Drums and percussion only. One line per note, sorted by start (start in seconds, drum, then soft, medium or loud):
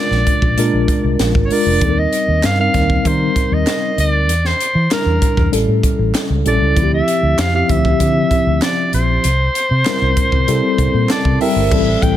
0.11 snare soft
0.27 kick medium
0.27 closed hi-hat medium
0.42 kick medium
0.58 closed hi-hat medium
0.88 kick medium
0.88 closed hi-hat medium
1.19 snare loud
1.19 closed hi-hat medium
1.35 kick medium
1.50 open hi-hat medium
1.81 kick loud
1.81 closed hi-hat medium
2.13 closed hi-hat medium
2.43 snare loud
2.43 clap medium
2.43 closed hi-hat medium
2.74 kick medium
2.74 snare soft
2.74 closed hi-hat medium
2.90 kick medium
3.05 kick medium
3.05 closed hi-hat medium
3.36 kick medium
3.36 closed hi-hat medium
3.67 snare loud
3.67 clap medium
3.67 closed hi-hat medium
3.98 closed hi-hat medium
4.29 closed hi-hat medium
4.45 snare soft
4.61 closed hi-hat medium
4.91 snare loud
4.91 clap medium
4.91 closed hi-hat medium
5.22 kick medium
5.22 closed hi-hat medium
5.37 kick medium
5.53 closed hi-hat medium
5.83 kick medium
5.83 closed hi-hat medium
6.15 snare loud
6.15 clap medium
6.15 closed hi-hat medium
6.46 closed hi-hat medium
6.76 kick loud
6.76 closed hi-hat medium
7.08 closed hi-hat medium
7.38 snare loud
7.38 clap medium
7.38 closed hi-hat medium
7.69 kick medium
7.69 closed hi-hat medium
7.85 kick medium
8.00 kick medium
8.00 closed hi-hat medium
8.31 kick medium
8.31 closed hi-hat medium
8.62 snare loud
8.62 clap medium
8.62 closed hi-hat medium
8.93 closed hi-hat medium
9.24 closed hi-hat medium
9.55 closed hi-hat medium
9.85 snare loud
9.85 clap medium
9.85 closed hi-hat medium
10.17 kick medium
10.17 closed hi-hat medium
10.32 kick medium
10.48 closed hi-hat medium
10.78 kick medium
10.78 closed hi-hat medium
11.09 snare loud
11.09 clap medium
11.09 closed hi-hat medium
11.25 kick medium
11.41 open hi-hat medium
11.71 kick loud
11.71 crash medium
12.02 kick medium
12.02 closed hi-hat medium